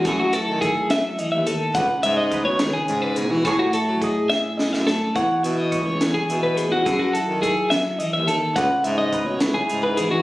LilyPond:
<<
  \new Staff \with { instrumentName = "Clean electric guitar" } { \time 6/8 \key fis \dorian \tempo 4. = 70 gis'16 fis'16 a'8 gis'8 e''8 dis''16 e''16 a'8 | fis''8 e''16 dis''8 cis''8 gis'8 b'16 gis'16 fis'16 | gis'16 fis'16 a'8 gis'8 e''8 dis''16 e''16 a'8 | fis''8 e''16 dis''8 cis''8 gis'8 b'16 gis'16 fis'16 |
gis'16 fis'16 a'8 gis'8 e''8 dis''16 e''16 a'8 | fis''8 e''16 dis''8 cis''8 gis'8 b'16 gis'16 fis'16 | }
  \new Staff \with { instrumentName = "Clean electric guitar" } { \time 6/8 \key fis \dorian << { <a e' gis' a'>8 e'8 a'2 | b'8 dis'8 b'2 | cis''8 e'8 dis''8 gis'8 e'4 | cis''8 e'8 cis''8 gis'8 e'4 |
a'8 e'8 a'2 | b'8 dis'8 b'8 e'8 dis'4 | } \\ { fis4. fis8 e8 dis8 | cis4. dis8 cis8 b,8 | a,2~ a,8 a8 | e2~ e8 b8 |
fis4. fis8 e8 dis8 | cis2~ cis8 e8 | } >> }
  \new Staff \with { instrumentName = "Baritone saxophone" } { \clef bass \time 6/8 \key fis \dorian fis,16 fis,16 r16 dis8 r4 dis,8 r16 | cis,16 r16 gis,8. b,16 cis,16 r16 gis,8. e16 | a,16 a,16 r16 fis8 r4 fis,8 r16 | e,16 r16 b,8. cis,16 e,16 r16 b,8. e,16 |
fis,16 fis,16 r16 dis8 r4 dis,8 r16 | cis,16 r16 gis,8. b,16 cis,16 r16 gis,8. e16 | }
  \new DrumStaff \with { instrumentName = "Drums" } \drummode { \time 6/8 <hh bd>8 hh8 <hh bd>8 <hh sn>8 hh8 hh8 | <hh bd>8 hh8 <hh bd>8 <hh sn>8 hh8 hh8 | <hh bd>8 hh8 <hh bd>8 sn8 sn16 sn16 sn8 | <hh bd>8 hh8 <hh bd>8 <hh sn>8 hh8 hh8 |
<hh bd>8 hh8 <hh bd>8 <hh sn>8 hh8 hh8 | <hh bd>8 hh8 <hh bd>8 <hh sn>8 hh8 hh8 | }
>>